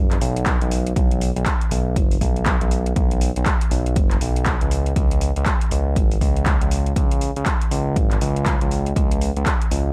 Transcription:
Already playing: analog synth bass F#1
0.11 clap, closed hi-hat
0.21 analog synth bass B1, open hi-hat
0.36 closed hi-hat
0.46 kick, clap, closed hi-hat
0.61 analog synth bass B1, closed hi-hat
0.71 open hi-hat
0.86 closed hi-hat
0.96 analog synth bass B1, kick, closed hi-hat
1.11 closed hi-hat
1.21 open hi-hat
1.36 analog synth bass B1, closed hi-hat
1.46 kick, clap, closed hi-hat
1.61 closed hi-hat
1.71 analog synth bass B1, open hi-hat
1.96 analog synth bass F#1, kick, closed hi-hat
2.11 open hi-hat
2.21 analog synth bass B1, kick, open hi-hat
2.36 closed hi-hat
2.46 kick, clap, closed hi-hat
2.61 analog synth bass B1, closed hi-hat
2.71 open hi-hat
2.86 closed hi-hat
2.96 analog synth bass B1, kick, closed hi-hat
3.11 closed hi-hat
3.21 open hi-hat
3.36 analog synth bass B1, closed hi-hat
3.46 kick, clap, closed hi-hat
3.61 closed hi-hat
3.71 analog synth bass B1, open hi-hat
3.86 closed hi-hat
3.96 analog synth bass F#1, kick, closed hi-hat
4.11 clap, closed hi-hat
4.21 analog synth bass B1, open hi-hat
4.36 closed hi-hat
4.46 kick, clap, closed hi-hat
4.61 analog synth bass C#2, closed hi-hat
4.71 open hi-hat
4.86 closed hi-hat
4.96 analog synth bass C#2, kick, closed hi-hat
5.11 closed hi-hat
5.21 open hi-hat
5.36 analog synth bass C#2, closed hi-hat
5.46 kick, clap, closed hi-hat
5.61 closed hi-hat
5.71 analog synth bass C#2, open hi-hat
5.96 analog synth bass G#1, kick, closed hi-hat
6.11 open hi-hat
6.21 analog synth bass C#2, kick, open hi-hat
6.36 closed hi-hat
6.46 kick, clap, closed hi-hat
6.61 analog synth bass C#2, closed hi-hat
6.71 open hi-hat
6.86 closed hi-hat
6.96 analog synth bass C#2, kick, closed hi-hat
7.11 closed hi-hat
7.21 open hi-hat
7.36 analog synth bass C#2, closed hi-hat
7.46 kick, clap, closed hi-hat
7.61 closed hi-hat
7.71 analog synth bass C#2, open hi-hat
7.96 analog synth bass G#1, kick, closed hi-hat
8.11 clap, closed hi-hat
8.21 analog synth bass C#2, open hi-hat
8.36 closed hi-hat
8.46 kick, clap, closed hi-hat
8.61 analog synth bass C#2, closed hi-hat
8.71 open hi-hat
8.86 closed hi-hat
8.96 analog synth bass C#2, kick, closed hi-hat
9.11 closed hi-hat
9.21 open hi-hat
9.36 analog synth bass C#2, closed hi-hat
9.46 kick, clap, closed hi-hat
9.62 closed hi-hat
9.71 analog synth bass C#2, open hi-hat

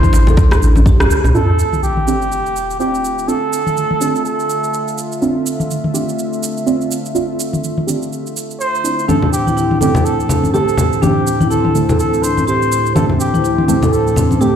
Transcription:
Already playing: analog synth bass D2, muted trumpet C5
0.03 marimba D4, kick, mid tom, shaker
0.13 analog synth bass A1, djembe slap, shaker
0.27 marimba A4, low conga, shaker
0.37 analog synth bass D2, kick, djembe slap, shaker
0.51 cross-stick, djembe slap, shaker
0.62 analog synth bass A1, marimba D4, shaker
0.76 djembe tone, high conga, shaker
0.86 marimba G4, kick, high tom, shaker
1.00 cross-stick, high tom, djembe bass, shaker
1.10 analog synth bass D2, marimba G4, shaker
1.24 analog synth bass C2, mid tom, djembe tone, shaker
1.34 analog synth pad D3 A3 F4 E5, synth stab C4 D4 F4, muted trumpet A4, sub drop, shaker
1.59 shaker
1.73 mid tom, shaker
1.83 muted trumpet G4, shaker
1.97 mid tom
2.07 synth stab C4 D4 G4, shaker
2.22 shaker
2.32 shaker
2.46 shaker
2.56 shaker
2.70 shaker
2.79 synth stab C4 D4 F4, muted trumpet G4, shaker
2.95 shaker
3.05 shaker
3.19 shaker
3.28 synth stab C4 D4 F4, muted trumpet A4, shaker
3.53 shaker
3.67 mid tom, shaker
3.77 shaker
3.91 mid tom
4.01 synth stab C4 D4 G4, shaker
4.15 shaker
4.25 muted trumpet A4, shaker
4.40 shaker
4.50 shaker
4.64 shaker
4.74 shaker
4.88 shaker
4.98 shaker
5.12 shaker
5.21 synth stab C4 D4 F4, shaker
5.46 shaker
5.60 mid tom, shaker
5.71 shaker
5.84 mid tom
5.94 synth stab C4 D4 G4, shaker
6.09 shaker
6.19 shaker
6.33 shaker
6.43 shaker
6.57 shaker
6.66 synth stab C4 D4 F4, shaker
6.81 shaker
6.91 shaker
7.06 shaker
7.15 synth stab C4 D4 F4, shaker
7.40 shaker
7.53 mid tom, shaker
7.64 shaker
7.78 mid tom
7.87 synth stab C4 D4 G4, shaker
8.02 shaker
8.13 shaker
8.27 shaker
8.37 shaker
8.51 shaker
8.60 muted trumpet C5, shaker
8.75 shaker
8.84 synth stab C4 D4 E4, shaker
8.99 shaker
9.08 analog synth pad D2 A2 E3 C4 C5, synth stab D3 A3 C4 G4, marimba D4, muted trumpet A4, high conga, shaker
9.22 low conga
9.32 muted trumpet G4, shaker
9.47 marimba E4, mid tom, shaker
9.57 marimba E4, shaker
9.71 marimba D4, mid tom
9.81 synth stab D3 A3 C4 A4, muted trumpet G4, high conga, shaker
9.95 marimba A4, low conga, shaker
10.05 muted trumpet A4, shaker
10.20 shaker
10.29 marimba D4, low conga, shaker
10.44 high conga, shaker
10.54 synth stab D3 A3 C4 G4, marimba G4, muted trumpet A4, shaker
10.69 shaker
10.78 marimba G4, low conga, shaker
10.93 shaker
11.02 synth stab D3 A3 C4 G4, marimba D4, muted trumpet G4, high conga, shaker
11.27 shaker
11.41 marimba E4, mid tom, high conga, shaker
11.50 marimba E4, muted trumpet A4, shaker
11.65 marimba D4, mid tom
11.75 synth stab D3 A3 C4 A4, shaker
11.89 marimba A4, low conga, shaker
11.99 muted trumpet A4, shaker
12.14 shaker
12.23 marimba D4, muted trumpet C5, shaker
12.37 high conga, shaker
12.47 marimba G4, muted trumpet C5, shaker
12.62 shaker
12.71 marimba G4, shaker
12.86 shaker
12.95 synth stab D3 A3 C4 G4, marimba D4, muted trumpet A4, high conga, shaker
13.09 low conga
13.19 muted trumpet G4, shaker
13.34 marimba E4, mid tom, shaker
13.44 marimba E4, shaker
13.58 marimba D4, mid tom
13.68 synth stab D3 A3 C4 A4, muted trumpet G4, high conga, shaker
13.82 marimba A4, low conga, shaker
13.92 muted trumpet A4, shaker
14.07 shaker
14.16 marimba D4, low conga, shaker
14.31 high conga, shaker
14.41 synth stab D3 A3 C4 G4, marimba G4, muted trumpet G4, shaker

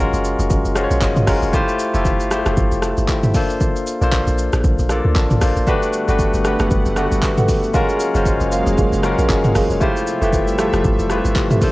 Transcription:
Already playing: tine electric piano G#3 C#4 F4 F#4 A#4
0.13 log drum bass F#1, shaker
0.24 shaker
0.39 log drum bass F1, shaker
0.50 log drum bass F#1, kick, shaker
0.65 log drum bass F#1, shaker
0.75 tine electric piano G#3 C#4 F4 F#4 C5 F5, cross-stick, shaker
0.84 tine electric piano C#5
0.91 log drum bass A#1, shaker
1.02 log drum bass F#1, tine electric piano G#5, kick, clap, shaker
1.17 mid tom, shaker
1.27 log drum bass F#1, tine electric piano G#3 C#4 F4 F#4 A#4 A#5, kick, cross-stick, open hi-hat, shaker
1.43 log drum bass F1, shaker
1.53 tine electric piano A3 E4 F4 G4 C5, kick, shaker
1.69 shaker
1.79 shaker
1.94 log drum bass F1, tine electric piano A3 E4 F4 G4 A4, shaker
2.05 kick, shaker
2.20 log drum bass G1, shaker
2.30 tine electric piano A3 E4 F4 G4 C5, cross-stick, shaker
2.46 log drum bass F1, cross-stick, shaker
2.57 log drum bass G1, kick, shaker
2.72 log drum bass F1, shaker
2.82 tine electric piano A5, cross-stick, shaker
2.98 log drum bass G1, shaker
3.08 tine electric piano G5, kick, clap, shaker
3.23 tine electric piano E5, mid tom, shaker
3.34 tine electric piano A#3 D4 F4 A4 C5, kick, open hi-hat, shaker
3.50 shaker
3.60 kick, shaker
3.76 shaker
3.86 shaker
4.01 log drum bass A#1, tine electric piano A#3 D4 F4 A4 C5, shaker
4.12 kick, clap, shaker
4.27 log drum bass A#1, shaker
4.38 shaker
4.53 log drum bass A1, cross-stick, shaker
4.64 log drum bass A#1, kick, shaker
4.79 log drum bass A#1, shaker
4.89 tine electric piano A#3 D4 F4 A4 D5, cross-stick, shaker
5.05 log drum bass D2
5.15 log drum bass A#1, tine electric piano A5, kick, clap, shaker
5.31 mid tom, shaker
5.41 log drum bass A#1, tine electric piano A#3 D4 F4 A4 C5, kick, cross-stick, open hi-hat, shaker
5.56 log drum bass A1, shaker
5.67 analog synth pad D3 G3 A3 B3 F#5, tine electric piano A3 D4 F#4 G4 B4, marimba A4 B4 F#5, kick, shaker
5.83 shaker
5.93 shaker
6.08 log drum bass G1, tine electric piano A3 D4 F#4 G4 B4, marimba A4 B4 F#5, shaker
6.19 kick, shaker
6.34 log drum bass G1, shaker
6.44 tine electric piano A3 D4 F#4 G4 B4, marimba A4 B4 F#5, cross-stick, shaker
6.59 log drum bass F#1, cross-stick, shaker
6.71 log drum bass G1, kick, shaker
6.85 log drum bass F#1, shaker
6.96 tine electric piano A3 D4 F#4 G4 B4, marimba A4 B4 F#5, cross-stick, shaker
7.12 log drum bass G1, shaker
7.22 kick, clap, shaker
7.37 marimba A4 B4 F#5, mid tom, shaker
7.48 kick, open hi-hat, shaker
7.63 shaker
7.73 analog synth pad C#3 F#3 G#3 A#3 F5, tine electric piano G#3 C#4 F4 F#4 A#4, marimba G#4 A#4 F5, kick, shaker
7.89 shaker
8.00 shaker
8.14 log drum bass F#1, tine electric piano G#3 C#4 F4 F#4 C5, shaker
8.26 kick, shaker
8.41 log drum bass F#1, shaker
8.52 marimba G#4 A#4 F5, shaker
8.67 log drum bass F1, shaker
8.78 log drum bass F#1, marimba G#4 A#4 F5, kick, shaker
8.93 log drum bass F#1, shaker
9.03 tine electric piano G#3 C#4 F4 F#4 A#4, cross-stick, shaker
9.18 log drum bass A#1, marimba G#4 A#4 F5, shaker
9.29 log drum bass F#1, tine electric piano G#5, kick, clap, shaker
9.45 tine electric piano F#5, mid tom, shaker
9.55 log drum bass F#1, marimba G#4 A#4 F5, tine electric piano D#5, kick, cross-stick, open hi-hat, shaker
9.70 log drum bass F1, tine electric piano C#5, shaker
9.80 analog synth pad C3 F3 G3 A3 E5, tine electric piano A3 E4 F4 G4 C5, marimba G4 A4 E5, kick, shaker
9.96 shaker
10.07 shaker
10.21 log drum bass F1, tine electric piano A3 E4 F4 G4 B4, marimba G4 A4 E5, shaker
10.33 kick, shaker
10.48 log drum bass G1, shaker
10.58 tine electric piano A3 E4 F4 G4 A4, marimba G4 A4 E5, cross-stick, shaker
10.73 log drum bass F1, cross-stick, shaker
10.85 log drum bass G1, kick, shaker
10.99 log drum bass F1, shaker
11.10 tine electric piano A3 E4 F4 G4 B4, marimba G4 A4 E5, cross-stick, shaker
11.25 log drum bass G1, shaker
11.36 kick, clap, shaker
11.51 marimba G4 A4 E5, mid tom, shaker
11.62 tine electric piano A#3 D4 F4 A4 C5, analog synth pad A#3 D4 A4, kick, open hi-hat, shaker

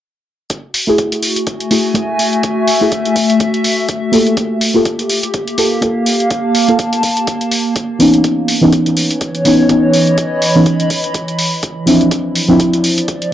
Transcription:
0.50 ambient pad F#4, kick, closed hi-hat
0.74 open hi-hat
0.81 ambient pad A3
0.87 synth stab A3 E4 F#4 G#4
0.98 kick, closed hi-hat
1.12 closed hi-hat
1.18 ambient pad G#5
1.23 open hi-hat
1.36 ambient pad E5, closed hi-hat
1.47 kick, closed hi-hat
1.60 closed hi-hat
1.70 synth stab A3 E4 F#4 G#4, open hi-hat
1.94 synth stab A3 E4 F#4 G#4, kick, closed hi-hat
2.19 open hi-hat
2.33 closed hi-hat
2.43 kick, closed hi-hat
2.68 open hi-hat
2.81 synth stab A3 E4 F#4 G#4
2.92 kick, closed hi-hat
3.05 closed hi-hat
3.16 kick, open hi-hat
3.30 closed hi-hat
3.40 kick, closed hi-hat
3.54 closed hi-hat
3.64 open hi-hat
3.89 kick, closed hi-hat
4.12 synth stab A#3 F4 G4 A4, open hi-hat
4.27 closed hi-hat
4.37 ambient pad G4, kick, closed hi-hat
4.61 open hi-hat
4.68 ambient pad A#3
4.74 synth stab A#3 F4 G4 A4
4.85 kick, closed hi-hat
4.99 closed hi-hat
5.09 open hi-hat
5.23 closed hi-hat
5.33 ambient pad F5, kick, closed hi-hat
5.48 closed hi-hat
5.58 synth stab A#3 F4 G4 A4, open hi-hat
5.81 synth stab A#3 F4 G4 A4, kick, closed hi-hat
6.06 open hi-hat
6.12 ambient pad A5
6.20 closed hi-hat
6.30 kick, closed hi-hat
6.55 open hi-hat
6.68 synth stab A#3 F4 G4 A4, closed hi-hat
6.79 kick, closed hi-hat
6.93 closed hi-hat
7.03 kick, open hi-hat
7.17 closed hi-hat
7.27 kick, closed hi-hat
7.41 closed hi-hat
7.52 open hi-hat
7.76 kick, closed hi-hat
7.99 synth stab E3 B3 C#4 D#4, open hi-hat
8.14 closed hi-hat
8.24 ambient pad E3, kick, closed hi-hat
8.48 open hi-hat
8.60 synth stab E3 B3 C#4 D#4, ambient pad C#5
8.73 kick, closed hi-hat
8.86 closed hi-hat
8.97 open hi-hat
9.11 closed hi-hat
9.21 kick, closed hi-hat
9.35 closed hi-hat
9.43 synth stab E3 B3 C#4 D#4, ambient pad D#5, open hi-hat
9.68 synth stab E3 B3 C#4 D#4, kick, closed hi-hat
9.83 ambient pad B5
9.93 open hi-hat
10.07 closed hi-hat
10.18 kick, closed hi-hat
10.42 open hi-hat
10.55 synth stab E3 B3 C#4 D#4
10.66 kick, closed hi-hat
10.80 closed hi-hat
10.90 kick, open hi-hat
11.04 closed hi-hat
11.14 kick, closed hi-hat
11.28 closed hi-hat
11.39 open hi-hat
11.63 kick, closed hi-hat
11.86 synth stab F3 C4 D4 E4, open hi-hat
12.01 closed hi-hat
12.11 ambient pad F3, kick, closed hi-hat
12.35 open hi-hat
12.41 ambient pad D5
12.48 synth stab F3 C4 D4 E4
12.60 kick, closed hi-hat
12.68 ambient pad E5
12.73 closed hi-hat
12.84 open hi-hat
12.98 closed hi-hat
13.08 kick, closed hi-hat
13.22 closed hi-hat

